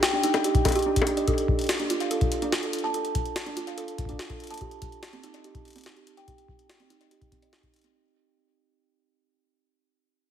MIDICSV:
0, 0, Header, 1, 3, 480
1, 0, Start_track
1, 0, Tempo, 416667
1, 1469, Time_signature, 4, 2, 24, 8
1, 11873, End_track
2, 0, Start_track
2, 0, Title_t, "Kalimba"
2, 0, Program_c, 0, 108
2, 29, Note_on_c, 0, 79, 98
2, 97, Note_off_c, 0, 79, 0
2, 151, Note_on_c, 0, 62, 100
2, 251, Note_off_c, 0, 62, 0
2, 271, Note_on_c, 0, 63, 97
2, 310, Note_off_c, 0, 63, 0
2, 391, Note_on_c, 0, 75, 72
2, 457, Note_off_c, 0, 75, 0
2, 512, Note_on_c, 0, 67, 78
2, 578, Note_off_c, 0, 67, 0
2, 752, Note_on_c, 0, 75, 72
2, 818, Note_off_c, 0, 75, 0
2, 870, Note_on_c, 0, 67, 104
2, 971, Note_off_c, 0, 67, 0
2, 990, Note_on_c, 0, 62, 99
2, 1030, Note_off_c, 0, 62, 0
2, 1230, Note_on_c, 0, 62, 104
2, 1331, Note_off_c, 0, 62, 0
2, 1350, Note_on_c, 0, 75, 80
2, 1417, Note_off_c, 0, 75, 0
2, 1469, Note_on_c, 0, 69, 79
2, 1510, Note_off_c, 0, 69, 0
2, 2070, Note_on_c, 0, 62, 100
2, 2171, Note_off_c, 0, 62, 0
2, 2190, Note_on_c, 0, 65, 92
2, 2230, Note_off_c, 0, 65, 0
2, 2310, Note_on_c, 0, 77, 69
2, 2377, Note_off_c, 0, 77, 0
2, 2430, Note_on_c, 0, 69, 76
2, 2497, Note_off_c, 0, 69, 0
2, 2790, Note_on_c, 0, 62, 103
2, 2857, Note_off_c, 0, 62, 0
2, 2909, Note_on_c, 0, 65, 80
2, 2950, Note_off_c, 0, 65, 0
2, 3030, Note_on_c, 0, 69, 74
2, 3131, Note_off_c, 0, 69, 0
2, 3270, Note_on_c, 0, 81, 102
2, 3337, Note_off_c, 0, 81, 0
2, 3390, Note_on_c, 0, 69, 77
2, 3430, Note_off_c, 0, 69, 0
2, 3989, Note_on_c, 0, 62, 100
2, 4090, Note_off_c, 0, 62, 0
2, 4109, Note_on_c, 0, 65, 95
2, 4150, Note_off_c, 0, 65, 0
2, 4230, Note_on_c, 0, 77, 71
2, 4297, Note_off_c, 0, 77, 0
2, 4351, Note_on_c, 0, 69, 79
2, 4417, Note_off_c, 0, 69, 0
2, 4711, Note_on_c, 0, 62, 99
2, 4777, Note_off_c, 0, 62, 0
2, 4831, Note_on_c, 0, 65, 84
2, 4871, Note_off_c, 0, 65, 0
2, 4952, Note_on_c, 0, 69, 73
2, 5051, Note_off_c, 0, 69, 0
2, 5190, Note_on_c, 0, 81, 100
2, 5257, Note_off_c, 0, 81, 0
2, 5312, Note_on_c, 0, 67, 78
2, 5351, Note_off_c, 0, 67, 0
2, 5910, Note_on_c, 0, 60, 99
2, 6011, Note_off_c, 0, 60, 0
2, 6031, Note_on_c, 0, 63, 95
2, 6071, Note_off_c, 0, 63, 0
2, 6151, Note_on_c, 0, 75, 70
2, 6218, Note_off_c, 0, 75, 0
2, 6273, Note_on_c, 0, 67, 76
2, 6338, Note_off_c, 0, 67, 0
2, 6631, Note_on_c, 0, 60, 107
2, 6698, Note_off_c, 0, 60, 0
2, 6751, Note_on_c, 0, 63, 81
2, 6790, Note_off_c, 0, 63, 0
2, 6871, Note_on_c, 0, 67, 72
2, 6971, Note_off_c, 0, 67, 0
2, 7112, Note_on_c, 0, 79, 103
2, 7178, Note_off_c, 0, 79, 0
2, 7231, Note_on_c, 0, 67, 78
2, 7271, Note_off_c, 0, 67, 0
2, 7831, Note_on_c, 0, 60, 96
2, 7931, Note_off_c, 0, 60, 0
2, 7951, Note_on_c, 0, 63, 92
2, 7991, Note_off_c, 0, 63, 0
2, 8072, Note_on_c, 0, 75, 72
2, 8138, Note_off_c, 0, 75, 0
2, 8191, Note_on_c, 0, 67, 76
2, 8258, Note_off_c, 0, 67, 0
2, 8433, Note_on_c, 0, 60, 74
2, 8532, Note_off_c, 0, 60, 0
2, 8553, Note_on_c, 0, 75, 80
2, 8652, Note_off_c, 0, 75, 0
2, 8672, Note_on_c, 0, 63, 83
2, 8711, Note_off_c, 0, 63, 0
2, 9031, Note_on_c, 0, 60, 76
2, 9131, Note_off_c, 0, 60, 0
2, 11873, End_track
3, 0, Start_track
3, 0, Title_t, "Drums"
3, 32, Note_on_c, 9, 38, 124
3, 32, Note_on_c, 9, 42, 64
3, 147, Note_off_c, 9, 38, 0
3, 147, Note_off_c, 9, 42, 0
3, 271, Note_on_c, 9, 42, 89
3, 386, Note_off_c, 9, 42, 0
3, 391, Note_on_c, 9, 42, 39
3, 391, Note_on_c, 9, 60, 70
3, 507, Note_off_c, 9, 42, 0
3, 507, Note_off_c, 9, 60, 0
3, 511, Note_on_c, 9, 42, 65
3, 626, Note_off_c, 9, 42, 0
3, 629, Note_on_c, 9, 36, 116
3, 630, Note_on_c, 9, 42, 38
3, 744, Note_off_c, 9, 36, 0
3, 746, Note_off_c, 9, 42, 0
3, 749, Note_on_c, 9, 36, 114
3, 750, Note_on_c, 9, 42, 86
3, 750, Note_on_c, 9, 60, 47
3, 780, Note_off_c, 9, 60, 0
3, 780, Note_on_c, 9, 60, 37
3, 790, Note_off_c, 9, 42, 0
3, 790, Note_on_c, 9, 42, 70
3, 810, Note_off_c, 9, 60, 0
3, 810, Note_on_c, 9, 60, 31
3, 830, Note_off_c, 9, 42, 0
3, 830, Note_on_c, 9, 42, 55
3, 840, Note_off_c, 9, 60, 0
3, 840, Note_on_c, 9, 60, 25
3, 864, Note_off_c, 9, 36, 0
3, 870, Note_off_c, 9, 42, 0
3, 870, Note_on_c, 9, 42, 46
3, 910, Note_off_c, 9, 42, 0
3, 910, Note_on_c, 9, 42, 36
3, 950, Note_off_c, 9, 42, 0
3, 950, Note_on_c, 9, 42, 30
3, 955, Note_off_c, 9, 60, 0
3, 1065, Note_off_c, 9, 42, 0
3, 1109, Note_on_c, 9, 36, 84
3, 1110, Note_on_c, 9, 42, 65
3, 1170, Note_on_c, 9, 60, 74
3, 1224, Note_off_c, 9, 36, 0
3, 1225, Note_off_c, 9, 42, 0
3, 1230, Note_on_c, 9, 42, 88
3, 1285, Note_off_c, 9, 60, 0
3, 1345, Note_off_c, 9, 42, 0
3, 1349, Note_on_c, 9, 42, 39
3, 1465, Note_off_c, 9, 42, 0
3, 1469, Note_on_c, 9, 36, 76
3, 1469, Note_on_c, 9, 42, 61
3, 1584, Note_off_c, 9, 36, 0
3, 1585, Note_off_c, 9, 42, 0
3, 1589, Note_on_c, 9, 42, 39
3, 1704, Note_off_c, 9, 42, 0
3, 1709, Note_on_c, 9, 36, 115
3, 1824, Note_off_c, 9, 36, 0
3, 1829, Note_on_c, 9, 42, 34
3, 1859, Note_off_c, 9, 42, 0
3, 1859, Note_on_c, 9, 42, 29
3, 1888, Note_off_c, 9, 42, 0
3, 1888, Note_on_c, 9, 42, 24
3, 1919, Note_off_c, 9, 42, 0
3, 1919, Note_on_c, 9, 42, 19
3, 1948, Note_off_c, 9, 42, 0
3, 1948, Note_on_c, 9, 38, 117
3, 1948, Note_on_c, 9, 42, 61
3, 2008, Note_off_c, 9, 42, 0
3, 2008, Note_on_c, 9, 42, 11
3, 2039, Note_off_c, 9, 42, 0
3, 2039, Note_on_c, 9, 42, 9
3, 2063, Note_off_c, 9, 38, 0
3, 2069, Note_off_c, 9, 42, 0
3, 2069, Note_on_c, 9, 42, 38
3, 2184, Note_off_c, 9, 42, 0
3, 2189, Note_on_c, 9, 42, 88
3, 2304, Note_off_c, 9, 42, 0
3, 2309, Note_on_c, 9, 42, 36
3, 2424, Note_off_c, 9, 42, 0
3, 2429, Note_on_c, 9, 42, 62
3, 2545, Note_off_c, 9, 42, 0
3, 2549, Note_on_c, 9, 36, 113
3, 2549, Note_on_c, 9, 42, 37
3, 2664, Note_off_c, 9, 36, 0
3, 2664, Note_off_c, 9, 42, 0
3, 2669, Note_on_c, 9, 42, 85
3, 2784, Note_off_c, 9, 42, 0
3, 2789, Note_on_c, 9, 42, 36
3, 2904, Note_off_c, 9, 42, 0
3, 2908, Note_on_c, 9, 38, 113
3, 2908, Note_on_c, 9, 42, 62
3, 3024, Note_off_c, 9, 38, 0
3, 3024, Note_off_c, 9, 42, 0
3, 3028, Note_on_c, 9, 42, 38
3, 3144, Note_off_c, 9, 42, 0
3, 3148, Note_on_c, 9, 42, 85
3, 3209, Note_off_c, 9, 42, 0
3, 3209, Note_on_c, 9, 42, 36
3, 3324, Note_off_c, 9, 42, 0
3, 3389, Note_on_c, 9, 42, 60
3, 3504, Note_off_c, 9, 42, 0
3, 3509, Note_on_c, 9, 42, 37
3, 3625, Note_off_c, 9, 42, 0
3, 3629, Note_on_c, 9, 36, 113
3, 3629, Note_on_c, 9, 42, 85
3, 3744, Note_off_c, 9, 36, 0
3, 3744, Note_off_c, 9, 42, 0
3, 3750, Note_on_c, 9, 42, 36
3, 3865, Note_off_c, 9, 42, 0
3, 3869, Note_on_c, 9, 38, 112
3, 3869, Note_on_c, 9, 42, 62
3, 3984, Note_off_c, 9, 38, 0
3, 3984, Note_off_c, 9, 42, 0
3, 3990, Note_on_c, 9, 42, 36
3, 4105, Note_off_c, 9, 42, 0
3, 4110, Note_on_c, 9, 42, 88
3, 4225, Note_off_c, 9, 42, 0
3, 4230, Note_on_c, 9, 42, 36
3, 4345, Note_off_c, 9, 42, 0
3, 4350, Note_on_c, 9, 42, 64
3, 4465, Note_off_c, 9, 42, 0
3, 4470, Note_on_c, 9, 42, 36
3, 4586, Note_off_c, 9, 42, 0
3, 4589, Note_on_c, 9, 36, 103
3, 4590, Note_on_c, 9, 42, 85
3, 4669, Note_off_c, 9, 36, 0
3, 4669, Note_on_c, 9, 36, 87
3, 4705, Note_off_c, 9, 42, 0
3, 4710, Note_on_c, 9, 42, 36
3, 4749, Note_off_c, 9, 36, 0
3, 4749, Note_on_c, 9, 36, 72
3, 4825, Note_off_c, 9, 42, 0
3, 4830, Note_on_c, 9, 38, 111
3, 4830, Note_on_c, 9, 42, 61
3, 4865, Note_off_c, 9, 36, 0
3, 4945, Note_off_c, 9, 38, 0
3, 4945, Note_off_c, 9, 42, 0
3, 4950, Note_on_c, 9, 36, 78
3, 4951, Note_on_c, 9, 42, 37
3, 5065, Note_off_c, 9, 36, 0
3, 5066, Note_off_c, 9, 42, 0
3, 5070, Note_on_c, 9, 42, 38
3, 5110, Note_off_c, 9, 42, 0
3, 5110, Note_on_c, 9, 42, 46
3, 5150, Note_off_c, 9, 42, 0
3, 5150, Note_on_c, 9, 42, 52
3, 5189, Note_off_c, 9, 42, 0
3, 5189, Note_on_c, 9, 42, 62
3, 5229, Note_off_c, 9, 42, 0
3, 5229, Note_on_c, 9, 42, 69
3, 5271, Note_off_c, 9, 42, 0
3, 5271, Note_on_c, 9, 42, 79
3, 5310, Note_off_c, 9, 42, 0
3, 5310, Note_on_c, 9, 36, 76
3, 5310, Note_on_c, 9, 42, 60
3, 5425, Note_off_c, 9, 36, 0
3, 5425, Note_off_c, 9, 42, 0
3, 5430, Note_on_c, 9, 42, 39
3, 5545, Note_off_c, 9, 42, 0
3, 5550, Note_on_c, 9, 36, 110
3, 5550, Note_on_c, 9, 42, 88
3, 5665, Note_off_c, 9, 36, 0
3, 5665, Note_off_c, 9, 42, 0
3, 5672, Note_on_c, 9, 42, 38
3, 5787, Note_off_c, 9, 42, 0
3, 5791, Note_on_c, 9, 38, 111
3, 5791, Note_on_c, 9, 42, 64
3, 5906, Note_off_c, 9, 38, 0
3, 5906, Note_off_c, 9, 42, 0
3, 5911, Note_on_c, 9, 42, 38
3, 6026, Note_off_c, 9, 42, 0
3, 6031, Note_on_c, 9, 42, 89
3, 6146, Note_off_c, 9, 42, 0
3, 6151, Note_on_c, 9, 42, 38
3, 6267, Note_off_c, 9, 42, 0
3, 6271, Note_on_c, 9, 42, 62
3, 6386, Note_off_c, 9, 42, 0
3, 6390, Note_on_c, 9, 36, 107
3, 6391, Note_on_c, 9, 42, 36
3, 6506, Note_off_c, 9, 36, 0
3, 6506, Note_off_c, 9, 42, 0
3, 6512, Note_on_c, 9, 42, 39
3, 6541, Note_off_c, 9, 42, 0
3, 6541, Note_on_c, 9, 42, 43
3, 6571, Note_off_c, 9, 42, 0
3, 6571, Note_on_c, 9, 42, 49
3, 6601, Note_off_c, 9, 42, 0
3, 6601, Note_on_c, 9, 42, 54
3, 6632, Note_off_c, 9, 42, 0
3, 6632, Note_on_c, 9, 42, 57
3, 6661, Note_off_c, 9, 42, 0
3, 6661, Note_on_c, 9, 42, 64
3, 6693, Note_off_c, 9, 42, 0
3, 6693, Note_on_c, 9, 42, 72
3, 6722, Note_off_c, 9, 42, 0
3, 6722, Note_on_c, 9, 42, 75
3, 6752, Note_on_c, 9, 38, 109
3, 6838, Note_off_c, 9, 42, 0
3, 6868, Note_off_c, 9, 38, 0
3, 6872, Note_on_c, 9, 42, 38
3, 6987, Note_off_c, 9, 42, 0
3, 6992, Note_on_c, 9, 42, 88
3, 7107, Note_off_c, 9, 42, 0
3, 7112, Note_on_c, 9, 42, 40
3, 7227, Note_off_c, 9, 42, 0
3, 7231, Note_on_c, 9, 36, 78
3, 7233, Note_on_c, 9, 42, 65
3, 7346, Note_off_c, 9, 36, 0
3, 7348, Note_off_c, 9, 42, 0
3, 7353, Note_on_c, 9, 42, 40
3, 7468, Note_off_c, 9, 42, 0
3, 7470, Note_on_c, 9, 36, 115
3, 7586, Note_off_c, 9, 36, 0
3, 7592, Note_on_c, 9, 42, 38
3, 7707, Note_off_c, 9, 42, 0
3, 7713, Note_on_c, 9, 38, 110
3, 7713, Note_on_c, 9, 42, 64
3, 7828, Note_off_c, 9, 38, 0
3, 7828, Note_off_c, 9, 42, 0
3, 7832, Note_on_c, 9, 42, 39
3, 7947, Note_off_c, 9, 42, 0
3, 7952, Note_on_c, 9, 42, 95
3, 8068, Note_off_c, 9, 42, 0
3, 8073, Note_on_c, 9, 42, 40
3, 8188, Note_off_c, 9, 42, 0
3, 8193, Note_on_c, 9, 42, 65
3, 8308, Note_off_c, 9, 42, 0
3, 8311, Note_on_c, 9, 36, 108
3, 8313, Note_on_c, 9, 42, 38
3, 8426, Note_off_c, 9, 36, 0
3, 8428, Note_off_c, 9, 42, 0
3, 8431, Note_on_c, 9, 36, 104
3, 8433, Note_on_c, 9, 42, 87
3, 8546, Note_off_c, 9, 36, 0
3, 8548, Note_off_c, 9, 42, 0
3, 8553, Note_on_c, 9, 42, 37
3, 8668, Note_off_c, 9, 42, 0
3, 8673, Note_on_c, 9, 38, 109
3, 8673, Note_on_c, 9, 42, 62
3, 8788, Note_off_c, 9, 38, 0
3, 8788, Note_off_c, 9, 42, 0
3, 8791, Note_on_c, 9, 36, 79
3, 8793, Note_on_c, 9, 42, 39
3, 8906, Note_off_c, 9, 36, 0
3, 8908, Note_off_c, 9, 42, 0
3, 8912, Note_on_c, 9, 42, 86
3, 8942, Note_off_c, 9, 42, 0
3, 8942, Note_on_c, 9, 42, 68
3, 8972, Note_off_c, 9, 42, 0
3, 8972, Note_on_c, 9, 42, 58
3, 9002, Note_off_c, 9, 42, 0
3, 9002, Note_on_c, 9, 42, 48
3, 9032, Note_off_c, 9, 42, 0
3, 9032, Note_on_c, 9, 42, 39
3, 9148, Note_off_c, 9, 42, 0
3, 11873, End_track
0, 0, End_of_file